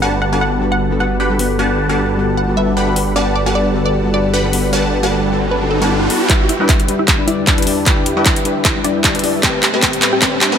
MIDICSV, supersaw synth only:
0, 0, Header, 1, 2, 480
1, 0, Start_track
1, 0, Key_signature, 1, "major"
1, 0, Tempo, 392157
1, 27, Time_signature, 4, 2, 24, 8
1, 12951, End_track
2, 0, Start_track
2, 0, Title_t, "Supersaw synth"
2, 0, Program_c, 0, 81
2, 28, Note_on_c, 0, 62, 93
2, 28, Note_on_c, 0, 67, 82
2, 28, Note_on_c, 0, 71, 87
2, 28, Note_on_c, 0, 78, 84
2, 28, Note_on_c, 0, 81, 106
2, 368, Note_off_c, 0, 62, 0
2, 368, Note_off_c, 0, 67, 0
2, 368, Note_off_c, 0, 71, 0
2, 368, Note_off_c, 0, 78, 0
2, 368, Note_off_c, 0, 81, 0
2, 399, Note_on_c, 0, 62, 78
2, 399, Note_on_c, 0, 67, 67
2, 399, Note_on_c, 0, 78, 69
2, 399, Note_on_c, 0, 81, 81
2, 400, Note_on_c, 0, 71, 69
2, 1441, Note_off_c, 0, 62, 0
2, 1441, Note_off_c, 0, 67, 0
2, 1441, Note_off_c, 0, 78, 0
2, 1441, Note_off_c, 0, 81, 0
2, 1442, Note_off_c, 0, 71, 0
2, 1467, Note_on_c, 0, 62, 76
2, 1467, Note_on_c, 0, 67, 71
2, 1467, Note_on_c, 0, 71, 71
2, 1467, Note_on_c, 0, 78, 71
2, 1467, Note_on_c, 0, 83, 84
2, 1921, Note_off_c, 0, 62, 0
2, 1921, Note_off_c, 0, 67, 0
2, 1921, Note_off_c, 0, 71, 0
2, 1921, Note_off_c, 0, 78, 0
2, 1921, Note_off_c, 0, 83, 0
2, 1946, Note_on_c, 0, 62, 92
2, 1946, Note_on_c, 0, 81, 105
2, 1947, Note_on_c, 0, 67, 85
2, 1947, Note_on_c, 0, 71, 82
2, 1947, Note_on_c, 0, 78, 89
2, 2287, Note_off_c, 0, 62, 0
2, 2287, Note_off_c, 0, 67, 0
2, 2287, Note_off_c, 0, 71, 0
2, 2287, Note_off_c, 0, 81, 0
2, 2288, Note_off_c, 0, 78, 0
2, 2318, Note_on_c, 0, 62, 77
2, 2319, Note_on_c, 0, 67, 69
2, 2319, Note_on_c, 0, 71, 71
2, 2319, Note_on_c, 0, 78, 68
2, 2319, Note_on_c, 0, 81, 84
2, 3361, Note_off_c, 0, 62, 0
2, 3361, Note_off_c, 0, 67, 0
2, 3361, Note_off_c, 0, 71, 0
2, 3361, Note_off_c, 0, 78, 0
2, 3361, Note_off_c, 0, 81, 0
2, 3387, Note_on_c, 0, 62, 77
2, 3387, Note_on_c, 0, 67, 74
2, 3387, Note_on_c, 0, 71, 70
2, 3387, Note_on_c, 0, 78, 73
2, 3387, Note_on_c, 0, 83, 86
2, 3841, Note_off_c, 0, 67, 0
2, 3841, Note_off_c, 0, 78, 0
2, 3841, Note_off_c, 0, 83, 0
2, 3842, Note_off_c, 0, 62, 0
2, 3842, Note_off_c, 0, 71, 0
2, 3866, Note_on_c, 0, 62, 96
2, 3866, Note_on_c, 0, 67, 83
2, 3867, Note_on_c, 0, 71, 87
2, 3867, Note_on_c, 0, 78, 87
2, 3867, Note_on_c, 0, 81, 99
2, 4207, Note_off_c, 0, 62, 0
2, 4207, Note_off_c, 0, 67, 0
2, 4207, Note_off_c, 0, 81, 0
2, 4208, Note_off_c, 0, 71, 0
2, 4208, Note_off_c, 0, 78, 0
2, 4239, Note_on_c, 0, 62, 73
2, 4239, Note_on_c, 0, 67, 72
2, 4239, Note_on_c, 0, 78, 72
2, 4239, Note_on_c, 0, 81, 85
2, 4240, Note_on_c, 0, 71, 67
2, 5281, Note_off_c, 0, 62, 0
2, 5281, Note_off_c, 0, 67, 0
2, 5281, Note_off_c, 0, 71, 0
2, 5281, Note_off_c, 0, 78, 0
2, 5281, Note_off_c, 0, 81, 0
2, 5307, Note_on_c, 0, 62, 82
2, 5307, Note_on_c, 0, 67, 71
2, 5307, Note_on_c, 0, 71, 75
2, 5307, Note_on_c, 0, 78, 73
2, 5307, Note_on_c, 0, 83, 87
2, 5761, Note_off_c, 0, 62, 0
2, 5761, Note_off_c, 0, 67, 0
2, 5761, Note_off_c, 0, 71, 0
2, 5761, Note_off_c, 0, 78, 0
2, 5761, Note_off_c, 0, 83, 0
2, 5787, Note_on_c, 0, 62, 90
2, 5787, Note_on_c, 0, 67, 86
2, 5787, Note_on_c, 0, 71, 84
2, 5787, Note_on_c, 0, 78, 86
2, 5787, Note_on_c, 0, 81, 103
2, 6128, Note_off_c, 0, 62, 0
2, 6128, Note_off_c, 0, 67, 0
2, 6128, Note_off_c, 0, 71, 0
2, 6128, Note_off_c, 0, 78, 0
2, 6128, Note_off_c, 0, 81, 0
2, 6159, Note_on_c, 0, 62, 78
2, 6159, Note_on_c, 0, 67, 71
2, 6159, Note_on_c, 0, 81, 86
2, 6160, Note_on_c, 0, 71, 69
2, 6160, Note_on_c, 0, 78, 73
2, 7093, Note_off_c, 0, 62, 0
2, 7093, Note_off_c, 0, 67, 0
2, 7093, Note_off_c, 0, 71, 0
2, 7093, Note_off_c, 0, 78, 0
2, 7093, Note_off_c, 0, 81, 0
2, 7119, Note_on_c, 0, 62, 81
2, 7119, Note_on_c, 0, 67, 77
2, 7119, Note_on_c, 0, 71, 77
2, 7119, Note_on_c, 0, 78, 76
2, 7119, Note_on_c, 0, 81, 89
2, 7681, Note_off_c, 0, 62, 0
2, 7681, Note_off_c, 0, 67, 0
2, 7681, Note_off_c, 0, 71, 0
2, 7681, Note_off_c, 0, 78, 0
2, 7681, Note_off_c, 0, 81, 0
2, 7706, Note_on_c, 0, 62, 94
2, 7706, Note_on_c, 0, 67, 84
2, 7706, Note_on_c, 0, 71, 85
2, 7706, Note_on_c, 0, 76, 90
2, 7706, Note_on_c, 0, 79, 100
2, 8047, Note_off_c, 0, 62, 0
2, 8047, Note_off_c, 0, 67, 0
2, 8047, Note_off_c, 0, 71, 0
2, 8047, Note_off_c, 0, 76, 0
2, 8047, Note_off_c, 0, 79, 0
2, 8079, Note_on_c, 0, 67, 69
2, 8079, Note_on_c, 0, 79, 86
2, 8080, Note_on_c, 0, 62, 75
2, 8080, Note_on_c, 0, 71, 73
2, 8080, Note_on_c, 0, 76, 69
2, 9121, Note_off_c, 0, 62, 0
2, 9121, Note_off_c, 0, 67, 0
2, 9121, Note_off_c, 0, 71, 0
2, 9121, Note_off_c, 0, 76, 0
2, 9121, Note_off_c, 0, 79, 0
2, 9146, Note_on_c, 0, 62, 79
2, 9146, Note_on_c, 0, 67, 71
2, 9146, Note_on_c, 0, 71, 72
2, 9146, Note_on_c, 0, 76, 73
2, 9146, Note_on_c, 0, 81, 88
2, 9601, Note_off_c, 0, 62, 0
2, 9601, Note_off_c, 0, 67, 0
2, 9601, Note_off_c, 0, 71, 0
2, 9601, Note_off_c, 0, 76, 0
2, 9601, Note_off_c, 0, 81, 0
2, 9626, Note_on_c, 0, 71, 85
2, 9626, Note_on_c, 0, 79, 109
2, 9627, Note_on_c, 0, 62, 93
2, 9627, Note_on_c, 0, 67, 85
2, 9627, Note_on_c, 0, 76, 86
2, 9967, Note_off_c, 0, 71, 0
2, 9967, Note_off_c, 0, 76, 0
2, 9967, Note_off_c, 0, 79, 0
2, 9968, Note_off_c, 0, 62, 0
2, 9968, Note_off_c, 0, 67, 0
2, 9998, Note_on_c, 0, 62, 80
2, 9998, Note_on_c, 0, 67, 68
2, 9998, Note_on_c, 0, 71, 73
2, 9998, Note_on_c, 0, 76, 73
2, 9998, Note_on_c, 0, 79, 82
2, 11041, Note_off_c, 0, 62, 0
2, 11041, Note_off_c, 0, 67, 0
2, 11041, Note_off_c, 0, 71, 0
2, 11041, Note_off_c, 0, 76, 0
2, 11041, Note_off_c, 0, 79, 0
2, 11066, Note_on_c, 0, 62, 80
2, 11066, Note_on_c, 0, 67, 73
2, 11066, Note_on_c, 0, 71, 75
2, 11066, Note_on_c, 0, 76, 75
2, 11066, Note_on_c, 0, 81, 86
2, 11521, Note_off_c, 0, 62, 0
2, 11521, Note_off_c, 0, 67, 0
2, 11521, Note_off_c, 0, 71, 0
2, 11521, Note_off_c, 0, 76, 0
2, 11521, Note_off_c, 0, 81, 0
2, 11546, Note_on_c, 0, 60, 89
2, 11546, Note_on_c, 0, 71, 78
2, 11546, Note_on_c, 0, 81, 92
2, 11547, Note_on_c, 0, 67, 81
2, 11547, Note_on_c, 0, 76, 78
2, 11887, Note_off_c, 0, 60, 0
2, 11887, Note_off_c, 0, 67, 0
2, 11887, Note_off_c, 0, 71, 0
2, 11887, Note_off_c, 0, 76, 0
2, 11887, Note_off_c, 0, 81, 0
2, 11917, Note_on_c, 0, 60, 76
2, 11917, Note_on_c, 0, 67, 66
2, 11917, Note_on_c, 0, 71, 65
2, 11917, Note_on_c, 0, 76, 68
2, 11917, Note_on_c, 0, 81, 82
2, 12489, Note_off_c, 0, 60, 0
2, 12489, Note_off_c, 0, 67, 0
2, 12489, Note_off_c, 0, 71, 0
2, 12489, Note_off_c, 0, 76, 0
2, 12489, Note_off_c, 0, 81, 0
2, 12505, Note_on_c, 0, 60, 93
2, 12505, Note_on_c, 0, 67, 82
2, 12505, Note_on_c, 0, 76, 83
2, 12505, Note_on_c, 0, 81, 99
2, 12506, Note_on_c, 0, 71, 83
2, 12847, Note_off_c, 0, 60, 0
2, 12847, Note_off_c, 0, 67, 0
2, 12847, Note_off_c, 0, 71, 0
2, 12847, Note_off_c, 0, 76, 0
2, 12847, Note_off_c, 0, 81, 0
2, 12877, Note_on_c, 0, 81, 80
2, 12878, Note_on_c, 0, 60, 69
2, 12878, Note_on_c, 0, 67, 66
2, 12878, Note_on_c, 0, 71, 68
2, 12878, Note_on_c, 0, 76, 66
2, 12951, Note_off_c, 0, 60, 0
2, 12951, Note_off_c, 0, 67, 0
2, 12951, Note_off_c, 0, 71, 0
2, 12951, Note_off_c, 0, 76, 0
2, 12951, Note_off_c, 0, 81, 0
2, 12951, End_track
0, 0, End_of_file